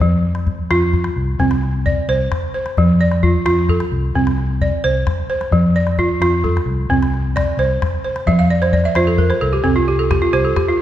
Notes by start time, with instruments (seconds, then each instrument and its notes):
Already playing: balafon C5
0.00 fingered electric bass F2, balafon F3, calabash thump
0.35 calabash click
0.47 calabash thump
0.71 fingered electric bass F2, balafon F4, calabash click
0.93 calabash thump, calabash click
1.04 calabash click
1.16 fingered electric bass C2
1.39 fingered electric bass C2, balafon C4, calabash thump
1.51 calabash click
1.63 calabash click
1.86 balafon D5, calabash thump
2.08 fingered electric bass C2, balafon C5
2.32 calabash thump, calabash click
2.54 balafon C5
2.66 calabash click
2.77 fingered electric bass F2, balafon F3, calabash thump
3.01 balafon D5
3.11 calabash click
3.23 balafon F4, calabash thump
3.46 fingered electric bass F2, balafon F4, calabash click
3.69 balafon A4, calabash thump, calabash click
3.80 calabash click
3.92 fingered electric bass C2
4.15 fingered electric bass C2, balafon C4, calabash thump
4.27 calabash click
4.38 calabash click
4.61 balafon D5, calabash thump
4.84 fingered electric bass C2, balafon C5
5.07 calabash thump, calabash click
5.30 balafon C5
5.41 calabash click
5.51 fingered electric bass F2, balafon F3, calabash thump
5.76 balafon D5
5.87 calabash click
5.98 balafon F4, calabash thump
6.20 fingered electric bass F2, balafon F4, calabash click
6.44 balafon A4, calabash thump, calabash click
6.57 calabash click
6.66 fingered electric bass C2
6.89 fingered electric bass C2, balafon C4, calabash thump
7.03 calabash click
7.14 calabash click
7.36 balafon D5, calabash thump, calabash click
7.57 fingered electric bass C2, balafon C5
7.82 calabash thump, calabash click
8.04 balafon C5
8.16 calabash click
8.26 fingered electric bass F2, balafon F3 E5, calabash thump, calabash click
8.39 balafon F5
8.50 balafon D5
8.62 balafon C5, calabash click
8.73 balafon D5, calabash thump
8.84 balafon E5, calabash click
8.95 fingered electric bass F2, balafon F4 C5, calabash click
9.07 balafon A4
9.18 balafon A#4, calabash thump
9.30 balafon C5, calabash click
9.41 fingered electric bass C2, balafon A4
9.53 balafon G4, calabash click
9.64 fingered electric bass C2, balafon C4 A4, calabash thump
9.76 balafon F4
9.88 balafon G4
9.99 balafon A4
10.11 balafon G4, calabash thump, calabash click
10.22 balafon F4
10.33 fingered electric bass C2, balafon G4 C5
10.45 balafon A4
10.56 balafon G4, calabash thump, calabash click
10.68 balafon F4